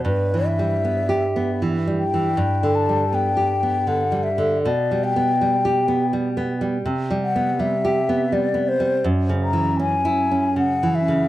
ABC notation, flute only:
X:1
M:3/4
L:1/8
Q:1/4=80
K:G
V:1 name="Flute"
B e3 z g- | g a g2 f e | d g3 z2 | z f e2 d c |
z ^a ^g2 f e |]